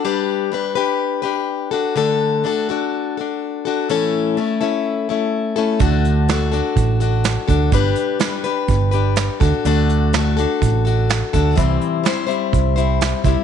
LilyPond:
<<
  \new Staff \with { instrumentName = "Steel-string acoustic guitar" } { \time 4/4 \key d \mixolydian \tempo 4 = 125 <g d' g' b'>4 <g d' g' b'>8 <d' g' b'>4 <d' g' b'>4 <d' fis' a'>8 | <d a d' fis' a'>4 <a d' fis' a'>8 <d' fis' a'>4 <d' fis' a'>4 <d' fis' a'>8 | <a, e a cis' e' a'>4 <a cis' e' a'>8 <a cis' e' a'>4 <a cis' e' a'>4 <a cis' e' a'>8 | <d a d' fis' a'>4 <a d' fis' a'>8 <d' fis' a'>4 <d' fis' a'>4 <d' fis' a'>8 |
<g d' g' b'>4 <g d' g' b'>8 <d' g' b'>4 <d' g' b'>4 <d' fis' a'>8 | <d a d' fis' a'>4 <a d' fis' a'>8 <d' fis' a'>4 <d' fis' a'>4 <d' fis' a'>8 | <c e g c' e' c''>4 <g c' e' c''>8 <g c' e' c''>4 <g c' e' c''>4 <g c' e' c''>8 | }
  \new Staff \with { instrumentName = "Picked electric bass" } { \clef bass \time 4/4 \key d \mixolydian r1 | r1 | r1 | d,2 a,,4. d,8 |
g,,8 r4. g,,4. d,16 r16 | d,2 a,,4. d,8 | c,8 r4. c,4. c,16 r16 | }
  \new DrumStaff \with { instrumentName = "Drums" } \drummode { \time 4/4 r4 r4 r4 r4 | r4 r4 r4 r4 | r4 r4 r4 r4 | <hh bd>8 hh8 <hh sn>8 hh8 <hh bd>8 hh8 <hh sn>8 <hh bd>8 |
<hh bd>8 hh8 <hh sn>8 hh8 <hh bd>8 hh8 <hh sn>8 <hh bd>8 | hh8 hh8 <hh sn>8 hh8 <hh bd>8 hh8 <hh sn>8 <hh bd>8 | <hh bd>8 hh8 <hh sn>8 hh8 <hh bd>8 hh8 <hh sn>8 <hh bd>8 | }
>>